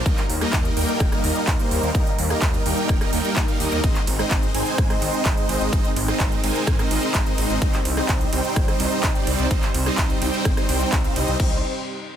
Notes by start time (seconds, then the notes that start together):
Already playing: A#3
0.06 D#2 G3 A#3 D#4 A#4 D#5, kick, closed hi-hat
0.18 clap, closed hi-hat
0.29 D#2, open hi-hat
0.41 G3 A#3 D#4 A#4 D#5, cross-stick, closed hi-hat
0.53 D#2, kick, clap, closed hi-hat
0.65 closed hi-hat
0.77 D#2 G3 A#3 D#4 A#4 G5, open hi-hat
0.89 closed hi-hat
1.00 D#1, kick, cross-stick, closed hi-hat
1.12 G3 A#3 D#4 A#4 D#5, cross-stick, closed hi-hat
1.24 D#2, open hi-hat
1.36 closed hi-hat
1.47 D#2, kick, clap, closed hi-hat
1.59 G3 A#3 D#4 A#4 C5, closed hi-hat
1.71 D#2, open hi-hat
1.83 D#2, closed hi-hat
1.95 D#2 G3 A#3 D#4 A#4 D#5, kick, closed hi-hat
2.07 closed hi-hat
2.19 D#2, open hi-hat
2.30 G3 A#3 D#4 A#4 D#5, cross-stick, closed hi-hat
2.42 D#2, kick, clap, closed hi-hat
2.54 closed hi-hat
2.66 D#2 G3 A#3 D#4 A#4 G5, open hi-hat
2.77 closed hi-hat
2.89 D#1, kick, cross-stick, closed hi-hat
3.01 G3 A#3 D#4 A#4 D#5, cross-stick, closed hi-hat
3.13 D#2 G3 A#3 D#4 A#4 G5, open hi-hat
3.25 closed hi-hat
3.36 D#2, kick, clap, closed hi-hat
3.48 G3 A#3 D#4 A#4 F5, closed hi-hat
3.60 D#2 G3 A#3 D#4 A#4 D#5, open hi-hat
3.72 D#2, closed hi-hat
3.84 G#1 G#3 C4 D#4 C5 D#5, kick, closed hi-hat, ride
3.95 clap, closed hi-hat
4.07 G#1, open hi-hat, ride
4.19 G#3 C4 D#4 C5 D#5, cross-stick, closed hi-hat
4.31 G#1, kick, clap, closed hi-hat, ride
4.43 closed hi-hat
4.55 G#1 G#3 C4 D#4 C5 G#5, open hi-hat, ride
4.67 closed hi-hat
4.78 G#2, kick, cross-stick, closed hi-hat, ride
4.90 G#3 C4 D#4 C5 D#5, cross-stick, closed hi-hat
5.02 G#1, open hi-hat, ride
5.14 closed hi-hat
5.25 G#1, kick, clap, closed hi-hat, ride
5.37 G#3 C4 D#4 C5 D#5, closed hi-hat
5.49 G#1, open hi-hat, ride
5.61 G#1, closed hi-hat
5.73 G#1 G#3 C4 D#4 A#4 C5 D#5, kick, closed hi-hat, ride
5.85 closed hi-hat
5.96 G#1, open hi-hat, ride
6.08 G#3 C4 D#4 C5 D#5, cross-stick, closed hi-hat
6.20 G#1, kick, clap, closed hi-hat, ride
6.32 closed hi-hat
6.44 G#1 G#3 C4 D#4 C5 G#5, open hi-hat, ride
6.56 closed hi-hat
6.67 G#2, kick, cross-stick, closed hi-hat, ride
6.79 G#3 C4 D#4 C5 D#5, cross-stick, closed hi-hat
6.91 G#1, open hi-hat, ride
7.03 closed hi-hat
7.14 G#1, kick, clap, closed hi-hat, ride
7.26 G#3 C4 D#4 C5 D#5, closed hi-hat
7.38 G#1, open hi-hat, ride
7.50 G#1, closed hi-hat
7.62 C2 G3 C4 D#4 C5 D#5, kick, closed hi-hat, ride
7.73 clap, closed hi-hat
7.85 C2, open hi-hat, ride
7.97 G3 C4 D#4 C5 D#5, cross-stick, closed hi-hat
8.09 C2, kick, clap, closed hi-hat, ride
8.21 closed hi-hat
8.33 C2 G3 C4 D#4 C5 G5, open hi-hat, ride
8.44 closed hi-hat
8.56 G1, kick, cross-stick, closed hi-hat, ride
8.68 G3 C4 D#4 C5 D#5, cross-stick, closed hi-hat
8.80 C2, open hi-hat, ride
8.92 closed hi-hat
9.03 C2, kick, clap, closed hi-hat, ride
9.15 G3 C4 D#4 C5 D5, closed hi-hat
9.27 C2, open hi-hat, ride
9.39 C2, closed hi-hat
9.51 C2 G3 C4 D#4 C5 D#5, kick, closed hi-hat, ride
9.62 clap, closed hi-hat
9.74 C2, open hi-hat, ride
9.86 G3 C4 D#4 C5 D#5, cross-stick, closed hi-hat
9.98 C2, kick, clap, closed hi-hat, ride
10.10 closed hi-hat
10.22 C2 G3 C4 D#4 C5 G5, open hi-hat, ride
10.34 closed hi-hat
10.45 G1, kick, cross-stick, closed hi-hat, ride
10.57 G3 C4 D#4 C5 D#5, cross-stick, closed hi-hat
10.69 C2 G3 C4 D#4 C5 G5, open hi-hat, ride
10.81 closed hi-hat
10.92 C2, kick, clap, closed hi-hat, ride
11.04 G3 C4 D#4 C5 F5, closed hi-hat
11.16 C2 G3 C4 D#4 C5 D#5, open hi-hat, ride
11.28 C2, closed hi-hat
11.40 C2 G3 C4 D#4 C5 D#5, kick, crash